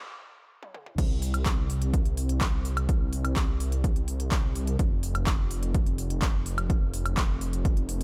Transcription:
0.63 high tom medium
0.75 mid tom medium
0.86 mid tom medium
0.98 4.77 C2 medium
0.98 kick loud
0.98 closed hi-hat medium
0.98 crash loud
1.22 open hi-hat loud
1.34 closed hi-hat medium
1.34 high woodblock medium
1.46 kick loud
1.46 clap loud
1.46 closed hi-hat medium
1.70 open hi-hat medium
1.82 closed hi-hat medium
1.94 kick loud
1.94 closed hi-hat medium
2.05 closed hi-hat soft
2.17 open hi-hat loud
2.29 closed hi-hat medium
2.41 kick loud
2.41 clap loud
2.41 closed hi-hat medium
2.65 open hi-hat medium
2.77 closed hi-hat medium
2.77 high woodblock medium
2.89 kick loud
2.89 closed hi-hat medium
3.13 open hi-hat loud
3.25 closed hi-hat medium
3.25 high woodblock medium
3.36 kick loud
3.36 clap loud
3.36 closed hi-hat medium
3.60 open hi-hat loud
3.72 closed hi-hat medium
3.84 kick loud
3.84 closed hi-hat medium
3.96 closed hi-hat soft
4.08 open hi-hat loud
4.20 closed hi-hat medium
4.32 kick loud
4.32 clap loud
4.32 closed hi-hat medium
4.55 open hi-hat loud
4.67 closed hi-hat medium
4.79 8.04 F1 medium
4.79 kick loud
4.79 closed hi-hat medium
5.03 open hi-hat loud
5.15 closed hi-hat medium
5.15 high woodblock medium
5.27 kick loud
5.27 clap loud
5.27 closed hi-hat medium
5.51 open hi-hat loud
5.63 closed hi-hat soft
5.75 kick loud
5.75 closed hi-hat medium
5.86 closed hi-hat soft
5.98 open hi-hat loud
6.10 closed hi-hat medium
6.22 kick loud
6.22 clap loud
6.22 closed hi-hat medium
6.46 open hi-hat loud
6.58 closed hi-hat medium
6.58 high woodblock medium
6.70 kick loud
6.70 closed hi-hat medium
6.94 open hi-hat loud
7.06 closed hi-hat medium
7.06 high woodblock medium
7.17 kick loud
7.17 clap loud
7.17 closed hi-hat medium
7.41 open hi-hat loud
7.53 closed hi-hat medium
7.65 kick loud
7.65 closed hi-hat medium
7.77 closed hi-hat soft
7.89 open hi-hat loud

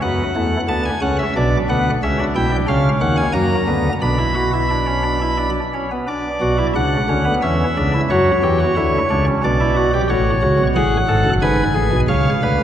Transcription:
0.02 0.23 F#2 medium
0.02 0.23 F#3 medium
0.02 0.23 B3 medium
0.02 0.60 F#5 medium
0.36 0.57 E2 medium
0.36 0.57 E3 medium
0.36 0.57 A3 medium
0.68 0.89 D2 medium
0.68 0.89 D3 medium
0.68 0.90 B3 medium
0.68 0.83 A5 medium
0.85 1.00 G#5 medium
1.02 1.23 C#2 medium
1.02 1.23 C#3 medium
1.02 1.23 C#4 medium
1.02 1.16 F#5 medium
1.19 1.33 E5 medium
1.36 1.57 B1 medium
1.36 1.57 B2 medium
1.36 1.57 D4 medium
1.36 1.57 D5 medium
1.69 1.90 D2 medium
1.69 1.90 D3 medium
1.69 1.90 B3 medium
1.69 1.90 F#5 medium
2.03 2.23 C#2 medium
2.03 2.24 C#3 medium
2.03 2.17 C#4 medium
2.03 2.23 E5 medium
2.20 2.34 D4 medium
2.36 2.56 B1 medium
2.36 2.56 B2 medium
2.36 2.50 E4 medium
2.36 2.56 G5 medium
2.52 2.66 D4 medium
2.68 2.89 C#2 medium
2.68 2.89 C#3 medium
2.68 3.25 C#4 medium
2.68 2.89 F5 medium
3.01 3.22 D#2 medium
3.01 3.22 D#3 medium
3.01 3.16 F#5 medium
3.17 3.32 G#5 medium
3.33 3.55 F#2 medium
3.33 3.55 F#3 medium
3.33 3.55 A#3 medium
3.33 3.93 A#5 medium
3.68 3.89 D2 medium
3.68 3.89 D3 medium
3.68 3.89 B3 medium
4.01 5.50 B1 medium
4.01 5.50 B2 medium
4.01 4.17 D4 medium
4.01 5.50 B5 medium
4.18 4.34 E4 medium
4.35 4.51 F#4 medium
4.53 4.68 E4 medium
4.70 4.86 D4 medium
4.87 5.02 C#4 medium
5.03 5.19 D4 medium
5.21 5.37 E4 medium
5.38 5.60 D4 medium
5.74 5.89 C#4 medium
5.91 6.06 B3 soft
6.08 6.29 D4 medium
6.08 6.66 D5 medium
6.41 6.62 B1 medium
6.41 6.62 B2 medium
6.41 6.57 F#4 medium
6.58 6.73 E4 medium
6.75 6.97 C#2 medium
6.75 6.97 C#3 medium
6.75 6.97 D4 medium
6.75 7.34 F#5 medium
7.09 7.30 D2 medium
7.09 7.30 D3 medium
7.09 7.24 C#4 medium
7.25 7.40 B3 medium
7.42 7.64 E2 medium
7.42 7.64 E3 medium
7.42 7.64 C#4 medium
7.42 8.01 E5 medium
7.77 7.98 C#2 medium
7.77 7.98 C#3 medium
7.77 7.92 D4 medium
7.94 8.08 E4 medium
8.10 8.31 F#2 medium
8.10 8.31 F#3 medium
8.10 8.31 F#4 medium
8.10 9.25 C#5 medium
8.43 8.64 E2 medium
8.43 8.64 E3 medium
8.43 8.58 G4 medium
8.60 8.75 F#4 medium
8.77 8.98 D2 medium
8.77 8.98 D3 medium
8.77 8.98 E4 medium
9.10 9.31 C#2 medium
9.10 9.30 C#3 medium
9.10 9.25 D4 medium
9.27 9.41 C#4 medium
9.44 10.00 B1 medium
9.44 10.01 B2 medium
9.44 9.58 D4 medium
9.44 10.01 D5 medium
9.60 9.74 E4 medium
9.77 9.91 F#4 medium
9.94 10.08 G4 medium
10.10 10.31 A1 medium
10.10 10.30 A2 medium
10.10 10.30 F#4 medium
10.10 10.67 C#5 medium
10.42 10.57 C#2 medium
10.42 10.57 C#3 medium
10.42 10.63 F#4 medium
10.59 10.73 B1 medium
10.59 10.74 B2 medium
10.76 10.96 A1 medium
10.76 10.97 A2 medium
10.76 10.97 G#4 medium
10.76 11.33 F#5 medium
11.08 11.23 G#1 medium
11.08 11.23 G#2 medium
11.08 11.29 A4 medium
11.25 11.40 F#1 medium
11.25 11.40 F#2 medium
11.42 11.63 G#1 medium
11.42 11.63 G#2 medium
11.42 11.63 B4 medium
11.42 12.00 G#5 medium
11.75 11.90 A1 medium
11.75 11.90 A2 medium
11.75 11.96 G#4 medium
11.92 12.07 B1 medium
11.92 12.07 B2 medium
12.08 12.29 C#2 medium
12.08 12.30 C#3 medium
12.08 12.29 C#5 medium
12.08 12.63 F5 medium
12.43 12.57 D2 medium
12.43 12.57 D3 medium
12.43 12.63 B4 medium

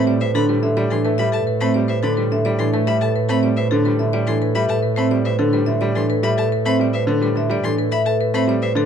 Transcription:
0.00 8.85 A2 medium
0.00 0.11 A3 medium
0.00 0.11 C4 loud
0.00 0.11 C5 medium
0.07 0.25 G3 medium
0.07 0.25 D5 medium
0.21 0.39 B4 medium
0.21 0.39 C5 medium
0.21 0.31 E5 medium
0.34 0.53 D3 medium
0.34 0.53 D4 medium
0.34 0.53 A4 medium
0.34 0.45 B5 medium
0.49 0.67 G3 medium
0.49 0.67 B4 medium
0.63 0.81 D3 medium
0.63 0.81 A4 medium
0.63 0.81 E5 medium
0.77 0.95 G3 medium
0.77 0.95 D5 medium
0.90 1.09 E3 medium
0.90 1.09 D4 medium
0.90 1.09 A4 medium
0.90 1.01 C6 medium
1.05 1.23 A3 medium
1.05 1.23 A4 medium
1.05 1.23 B4 medium
1.18 1.37 G3 medium
1.18 1.37 E5 medium
1.18 1.29 B5 medium
1.32 1.51 A4 medium
1.32 1.51 B4 medium
1.32 1.43 A5 medium
1.47 1.65 B4 medium
1.61 1.79 A3 medium
1.61 1.79 C4 medium
1.61 1.79 C5 medium
1.61 1.71 B5 medium
1.74 1.93 G3 medium
1.74 1.93 D5 medium
1.88 2.07 B4 medium
1.88 2.07 C5 medium
1.88 1.99 E5 medium
2.03 2.21 D3 medium
2.03 2.21 D4 medium
2.03 2.21 A4 medium
2.03 2.13 B5 medium
2.17 2.35 G3 medium
2.17 2.35 B4 medium
2.31 2.49 D3 medium
2.31 2.49 A4 medium
2.31 2.49 E5 medium
2.45 2.63 G3 medium
2.45 2.63 D5 medium
2.59 2.77 E3 medium
2.59 2.77 D4 medium
2.59 2.77 A4 medium
2.59 2.69 C6 medium
2.73 2.91 A3 medium
2.73 2.91 A4 medium
2.73 2.91 B4 medium
2.87 3.05 G3 medium
2.87 3.05 E5 medium
2.87 2.97 B5 medium
3.01 3.19 A4 medium
3.01 3.19 B4 medium
3.01 3.11 A5 medium
3.16 3.33 B4 medium
3.29 3.47 A3 medium
3.29 3.47 C4 medium
3.29 3.47 C5 medium
3.29 3.39 B5 medium
3.43 3.61 G3 medium
3.43 3.61 D5 medium
3.57 3.75 B4 medium
3.57 3.75 C5 medium
3.57 3.67 E5 medium
3.71 3.89 D3 medium
3.71 3.89 D4 medium
3.71 3.89 A4 medium
3.85 4.04 G3 medium
3.85 4.03 B4 medium
3.99 4.18 D3 medium
3.99 4.17 A4 medium
3.99 4.17 E5 medium
4.13 4.31 G3 medium
4.13 4.31 D5 medium
4.27 4.45 E3 medium
4.27 4.45 D4 medium
4.27 4.45 A4 medium
4.27 4.37 C6 medium
4.41 4.59 A4 medium
4.41 4.60 B4 medium
4.55 4.73 G3 medium
4.55 4.73 E5 medium
4.55 4.66 B5 medium
4.69 4.87 A4 medium
4.69 4.87 B4 medium
4.69 4.79 A5 medium
4.83 5.01 B4 medium
4.96 5.15 A3 medium
4.96 5.15 C4 medium
4.96 5.15 C5 medium
4.96 5.08 B5 medium
5.11 5.29 G3 medium
5.11 5.29 D5 medium
5.25 5.43 B4 medium
5.25 5.43 C5 medium
5.25 5.36 E5 medium
5.39 5.57 D3 medium
5.39 5.57 D4 medium
5.39 5.57 A4 medium
5.53 5.71 G3 medium
5.53 5.71 B4 medium
5.66 5.86 D3 medium
5.66 5.85 A4 medium
5.66 5.85 E5 medium
5.81 6.00 G3 medium
5.81 5.99 D5 medium
5.95 6.13 E3 medium
5.95 6.14 D4 medium
5.95 6.13 A4 medium
5.95 6.06 C6 medium
6.09 6.27 A4 medium
6.09 6.28 B4 medium
6.23 6.41 G3 medium
6.23 6.42 E5 medium
6.23 6.34 B5 medium
6.37 6.56 A4 medium
6.37 6.56 B4 medium
6.37 6.48 A5 medium
6.52 6.70 B4 medium
6.65 6.84 A3 medium
6.65 6.84 C4 medium
6.65 6.84 C5 medium
6.65 6.76 B5 medium
6.79 6.98 G3 medium
6.79 6.98 D5 medium
6.93 7.12 B4 medium
6.93 7.12 C5 medium
6.93 7.04 E5 medium
7.07 7.25 D3 medium
7.07 7.26 D4 medium
7.07 7.26 A4 medium
7.21 7.40 G3 medium
7.21 7.40 B4 medium
7.36 7.54 D3 medium
7.36 7.54 A4 medium
7.36 7.54 E5 medium
7.50 7.68 G3 medium
7.50 7.68 D5 medium
7.64 7.82 E3 medium
7.64 7.82 D4 medium
7.64 7.82 A4 medium
7.64 7.74 C6 medium
7.78 7.96 A4 medium
7.78 7.96 B4 medium
7.92 8.10 E5 loud
7.92 8.02 B5 medium
8.06 8.24 A4 medium
8.06 8.24 B4 medium
8.06 8.16 A5 medium
8.21 8.38 B4 medium
8.34 8.52 A3 medium
8.34 8.52 C4 medium
8.34 8.52 C5 medium
8.34 8.44 B5 medium
8.47 8.66 G3 medium
8.47 8.66 D5 medium
8.62 8.80 B4 medium
8.62 8.80 C5 medium
8.62 8.72 E5 medium
8.75 8.85 D3 medium
8.75 8.85 D4 medium
8.75 8.85 A4 medium

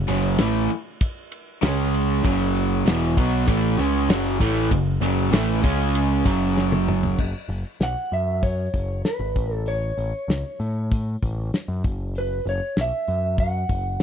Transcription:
0.07 0.37 F#1 medium
0.07 0.37 F#2 medium
0.07 0.38 C#3 medium
0.07 0.38 F#3 medium
0.07 ride medium
0.38 0.67 A1 medium
0.38 0.69 A2 medium
0.38 0.69 E3 medium
0.38 0.69 A3 medium
0.38 snare loud
0.38 ride loud
0.70 ride medium
1.01 kick loud
1.01 ride loud
1.32 ride medium
1.62 2.20 C#2 loud
1.62 2.23 C#3 medium
1.62 2.23 G#3 medium
1.62 2.23 C#4 medium
1.62 snare loud
1.62 ride medium
1.94 ride medium
2.24 2.82 F#1 loud
2.24 2.85 F#2 medium
2.24 2.85 C#3 loud
2.24 2.85 F#3 loud
2.24 kick loud
2.24 ride medium
2.41 snare soft
2.56 ride medium
2.86 3.14 E1 medium
2.86 3.16 E2 medium
2.86 3.16 B2 medium
2.86 3.17 E3 loud
2.86 snare loud
2.86 ride medium
3.17 3.45 B1 loud
3.17 3.47 B2 loud
3.17 3.47 F#3 loud
3.17 3.47 B3 loud
3.17 kick medium
3.17 ride medium
3.47 3.76 A1 medium
3.47 3.77 A2 medium
3.47 3.77 E3 medium
3.47 3.78 A3 medium
3.47 kick loud
3.47 ride medium
3.78 4.07 C#2 medium
3.78 4.08 C#3 medium
3.78 4.09 G#3 medium
3.78 4.09 C#4 loud
3.78 ride medium
4.09 4.38 F#1 loud
4.09 4.39 F#2 medium
4.09 4.39 C#3 medium
4.09 4.40 F#3 medium
4.09 snare loud
4.09 ride medium
4.26 snare soft
4.40 4.69 A1 medium
4.40 4.70 A2 medium
4.40 4.70 E3 loud
4.40 4.70 A3 loud
4.40 kick loud
4.40 ride medium
4.71 5.00 F#1 medium
4.71 4.96 F#2 medium
4.71 4.96 C#3 medium
4.71 kick medium
4.71 ride medium
5.00 5.30 F#1 medium
5.00 5.32 F#2 medium
5.00 5.30 C#3 medium
5.00 5.31 F#3 medium
5.00 ride medium
5.31 5.61 A1 medium
5.31 5.61 A2 medium
5.31 5.62 E3 medium
5.31 5.62 A3 medium
5.31 snare loud
5.31 ride loud
5.62 6.22 C#2 medium
5.62 6.24 C#3 medium
5.62 6.24 G#3 medium
5.62 6.24 C#4 loud
5.62 kick loud
5.62 ride medium
5.95 ride loud
6.25 7.15 F#1 medium
6.25 7.17 F#2 medium
6.25 7.18 C#3 medium
6.25 7.18 F#3 loud
6.25 kick loud
6.25 ride medium
6.57 snare medium
6.72 high tom medium
6.88 mid tom medium
7.03 floor tom medium
7.19 7.33 F#1 medium
7.19 kick medium
7.19 crash medium
7.48 7.63 F#1 medium
7.48 open hi-hat soft
7.80 7.94 B1 medium
7.80 8.14 F#5 medium
7.80 snare medium
7.80 open hi-hat medium
8.12 8.67 F#2 medium
8.12 8.42 E5 medium
8.12 open hi-hat soft
8.42 9.05 C#5 medium
8.42 kick loud
8.42 open hi-hat medium
8.74 9.02 F#1 medium
8.74 kick medium
8.74 open hi-hat soft
9.05 9.54 B4 medium
9.05 snare medium
9.05 open hi-hat medium
9.19 9.34 G#1 medium
9.35 9.91 A1 medium
9.35 kick medium
9.35 open hi-hat soft
9.54 9.69 A4 medium
9.66 10.88 C#5 medium
9.66 open hi-hat medium
9.97 10.12 A1 medium
9.97 open hi-hat soft
10.28 10.42 C#2 medium
10.28 snare loud
10.28 open hi-hat medium
10.60 11.15 A2 medium
10.60 open hi-hat soft
10.92 kick loud
10.92 open hi-hat medium
11.22 11.50 A1 medium
11.22 kick medium
11.22 open hi-hat soft
11.54 snare medium
11.54 open hi-hat medium
11.68 11.82 F#2 medium
11.84 12.39 F#1 medium
11.84 kick medium
11.84 open hi-hat soft
12.15 12.49 B4 medium
12.15 open hi-hat medium
12.45 12.60 F#1 medium
12.45 12.79 C#5 medium
12.45 open hi-hat soft
12.77 12.91 B1 medium
12.77 snare medium
12.77 open hi-hat medium
12.81 13.39 E5 medium
13.07 13.63 F#2 medium
13.07 open hi-hat soft
13.38 14.03 F#5 medium
13.38 kick loud
13.38 open hi-hat medium
13.69 13.97 F#1 medium
13.69 kick medium
13.69 open hi-hat soft
14.00 open hi-hat medium

